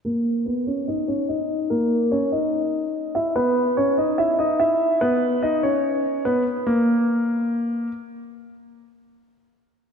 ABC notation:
X:1
M:4/4
L:1/8
Q:1/4=145
K:Dbdor
V:1 name="Grand piano"
[B,B]2 [Cc] [Dd] [Ee] [Dd] [Ee]2 | [B,B]2 [Dd] [Ee]4 [Ff] | [Cc]2 [Dd] [Ee] [Ff] [Ee] [Ff]2 | [Cc]2 [Ee] [Dd]3 [Cc] z |
B,6 z2 | z8 |]